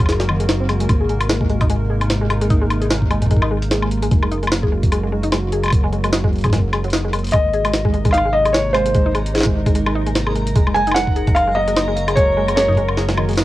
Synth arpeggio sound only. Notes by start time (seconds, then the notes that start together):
0.09 G#4
0.20 G#3
0.29 D#3
0.40 G#3
0.49 D#4
0.60 C4
0.69 G#3
0.80 G#3
1.00 G#4
1.09 G#3
1.29 G#3
1.41 G#3
1.50 G#3
1.61 D#4
1.70 G#3
1.90 G#4
2.01 G#3
2.21 G#3
2.30 G#3
2.41 G#3
2.50 D#4
2.62 G#3
2.82 G#4
2.90 G#3
3.11 G#3
3.22 G#3
3.31 G#3
3.42 D#4
3.51 G#3
3.71 G#4
3.82 G#3
4.03 G#3
4.11 G#3
4.23 G#3
4.32 D#4
4.43 G#3
4.63 G#4
4.72 G#3
4.92 G#3
5.03 G#3
5.12 G#3
5.23 D#4
5.32 G#3
5.52 G#4
5.64 G#3
5.84 G#3
5.93 G#3
6.04 G#3
6.13 D#4
6.24 G#3
6.44 G#4
6.53 G#3
6.73 G#3
6.84 F#3
6.93 D#4
7.05 G#3
7.13 G#3
7.34 G#3
7.54 G#4
7.65 G#3
7.85 G#3
7.94 G#3
8.05 G#3
8.14 D#4
8.25 G#3
8.45 G#4
8.54 G#3
8.75 G#3
8.86 G#3
8.95 G#3
9.06 D#4
9.15 G#3
9.35 G#4
9.46 G#3
9.66 G#3
9.75 G#3
9.86 G#3
9.95 D#4
10.07 G#3
10.27 G#4
10.36 G#3
10.56 G#3
10.67 G#3
10.76 G#3
10.87 D#4
10.96 G#3
11.16 G#4
11.27 G#3
11.47 G#3
11.56 G#3
11.68 G#3
11.76 D#4
11.88 G#3
12.08 G#4
12.17 G#3
12.37 G#3
12.48 G#3
12.57 G#3
12.68 D#4
12.77 G#3
12.97 G#4
13.09 G#3
13.18 D#3
13.29 G#3
13.38 D#4